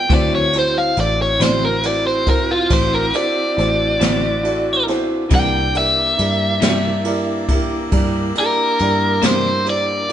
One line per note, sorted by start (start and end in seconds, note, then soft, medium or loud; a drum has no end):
0.00 0.12 G5 medium
0.07 0.93 D2 medium
0.07 0.36 D3 medium
0.07 0.36 F#3 medium
0.07 5.26 C4 medium
0.07 5.27 C4 medium
0.07 0.37 C4 medium
0.07 5.26 E4 medium
0.07 0.43 E4 medium
0.07 0.37 E4 medium
0.07 5.26 F#4 medium
0.07 5.27 F#4 medium
0.07 kick loud
0.07 ride medium
0.11 2.69 E4 medium
0.11 0.44 F#4 medium
0.11 0.44 A4 medium
0.11 0.45 C5 medium
0.11 0.34 D5 medium
0.35 0.55 C#5 medium
0.53 0.87 E4 soft
0.53 0.87 F#4 medium
0.53 0.87 A4 soft
0.53 0.88 C5 medium
0.53 ride medium
0.59 0.78 C5 medium
0.78 0.98 F5 medium
0.97 1.38 A1 loud
0.97 1.30 E4 medium
0.97 1.30 F#4 soft
0.97 1.31 A4 soft
0.97 1.31 C5 medium
0.97 1.20 D5 medium
0.97 ride medium
1.22 1.42 C#5 medium
1.39 2.67 A1 loud
1.39 1.68 D3 medium
1.39 1.68 F#3 medium
1.39 1.67 C4 medium
1.39 1.73 E4 medium
1.39 1.67 E4 medium
1.39 1.73 F#4 soft
1.39 1.74 A4 soft
1.39 1.74 C5 medium
1.39 1.63 C5 medium
1.39 snare loud
1.39 ride medium
1.65 1.85 A#4 medium
1.83 2.17 E4 medium
1.83 2.17 F#4 soft
1.83 2.17 A4 soft
1.83 2.18 C5 medium
1.83 2.06 D5 medium
1.83 ride medium
2.07 2.28 C5 medium
2.26 2.60 E4 medium
2.26 2.59 F#4 soft
2.26 2.60 A4 medium
2.26 2.50 A#4 medium
2.26 2.60 C5 medium
2.26 kick medium
2.26 ride medium
2.51 2.71 F4 medium
2.68 3.11 A1 medium
2.68 10.12 D4 medium
2.68 3.03 E4 medium
2.68 3.03 F#4 soft
2.68 3.03 A4 soft
2.68 3.04 C5 medium
2.68 kick medium
2.68 ride medium
2.73 2.93 C5 medium
2.94 3.15 A#4 medium
3.13 3.47 E4 medium
3.13 3.47 F#4 soft
3.13 3.47 A4 medium
3.13 3.47 C5 medium
3.13 4.85 D5 loud
3.13 ride medium
3.57 3.98 A1 medium
3.57 3.90 E4 medium
3.57 3.90 F#4 medium
3.57 3.90 A4 medium
3.57 3.91 C5 medium
3.57 snare soft
3.57 ride medium
4.00 5.28 A1 medium
4.00 4.28 D3 medium
4.00 4.28 F#3 medium
4.00 4.27 C4 medium
4.00 4.33 E4 medium
4.00 4.27 E4 medium
4.00 4.33 F#4 medium
4.00 4.34 A4 medium
4.00 4.34 C5 medium
4.00 snare loud
4.00 ride medium
4.43 4.77 E4 medium
4.43 4.77 F#4 medium
4.43 4.77 A4 medium
4.43 4.77 D5 medium
4.43 ride medium
4.87 5.20 E4 medium
4.87 5.20 F#4 medium
4.87 5.21 A4 medium
4.87 5.21 C5 medium
4.87 snare soft
4.87 ride medium
5.27 6.14 C2 loud
5.27 5.57 C3 medium
5.27 5.57 E3 medium
5.27 5.58 A#3 medium
5.27 10.12 D4 medium
5.27 10.12 E4 medium
5.27 5.63 E4 medium
5.27 5.64 G4 medium
5.27 10.12 A#4 medium
5.27 kick loud
5.27 ride medium
5.32 10.12 A#3 medium
5.32 5.58 D4 medium
5.32 10.12 E4 medium
5.32 5.64 A#4 medium
5.32 5.65 D5 medium
5.32 5.75 G5 medium
5.74 6.07 E4 medium
5.74 6.07 G4 soft
5.74 6.08 A#4 soft
5.74 6.08 D5 medium
5.74 7.46 E5 medium
5.74 ride medium
6.17 6.59 G2 loud
6.17 6.50 E4 medium
6.17 6.51 G4 soft
6.17 6.51 A#4 medium
6.17 6.51 D5 medium
6.17 ride medium
6.60 7.88 G2 medium
6.60 6.88 C3 medium
6.60 6.88 E3 medium
6.60 6.87 A#3 medium
6.60 6.87 D4 medium
6.60 6.94 E4 medium
6.60 6.94 G4 medium
6.60 6.94 A#4 soft
6.60 6.95 D5 medium
6.60 snare loud
6.60 ride medium
7.05 7.38 E4 medium
7.05 7.38 G4 medium
7.05 7.38 A#4 medium
7.05 7.38 D5 medium
7.05 ride medium
7.48 7.81 E4 medium
7.48 7.81 G4 medium
7.48 7.82 A#4 medium
7.48 7.82 E5 medium
7.48 kick medium
7.48 ride medium
7.91 8.32 G2 medium
7.91 8.24 E4 medium
7.91 8.25 G4 medium
7.91 8.25 A#4 medium
7.91 8.25 D5 medium
7.91 kick medium
7.91 ride medium
8.35 8.68 E4 medium
8.35 8.68 G4 medium
8.35 8.69 A#4 medium
8.35 8.69 D5 medium
8.35 ride medium
8.39 9.22 A#4 loud
8.79 9.20 G2 medium
8.79 9.12 E4 medium
8.79 9.12 G4 medium
8.79 9.13 A#4 soft
8.79 9.13 D5 medium
8.79 ride medium
9.22 10.12 G2 medium
9.22 9.49 C3 medium
9.22 9.48 E3 medium
9.22 9.48 A#3 medium
9.22 9.48 D4 medium
9.22 9.55 E4 medium
9.22 9.55 G4 medium
9.22 9.55 A#4 medium
9.22 9.56 C5 medium
9.22 snare loud
9.22 ride medium
9.26 9.66 C5 medium
9.65 9.97 E4 medium
9.65 9.98 G4 soft
9.65 9.98 A#4 soft
9.65 9.99 D5 medium
9.65 ride medium
9.70 10.10 D5 medium
10.09 10.12 E4 medium
10.09 ride medium